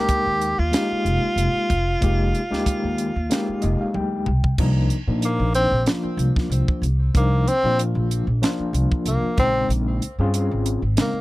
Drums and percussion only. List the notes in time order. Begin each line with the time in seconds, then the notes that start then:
0.09 kick, closed hi-hat
0.41 closed hi-hat
0.73 snare, closed hi-hat
1.06 closed hi-hat
1.38 closed hi-hat
1.70 kick, closed hi-hat
2.02 kick, closed hi-hat
2.35 closed hi-hat
2.53 snare
2.66 kick, closed hi-hat
2.98 closed hi-hat
3.31 snare, closed hi-hat
3.62 closed hi-hat
3.94 high tom
4.26 mid tom
4.44 kick
4.58 kick, crash
4.90 closed hi-hat
5.22 closed hi-hat
5.54 closed hi-hat
5.86 snare, closed hi-hat
6.19 closed hi-hat
6.36 kick, snare
6.52 closed hi-hat
6.68 kick
6.83 closed hi-hat
7.15 kick, closed hi-hat
7.48 closed hi-hat
7.79 closed hi-hat
8.11 closed hi-hat
8.43 snare, closed hi-hat
8.74 closed hi-hat
8.92 kick
9.06 closed hi-hat
9.38 kick, closed hi-hat
9.70 closed hi-hat
10.02 closed hi-hat
10.34 closed hi-hat
10.66 closed hi-hat
10.97 snare, closed hi-hat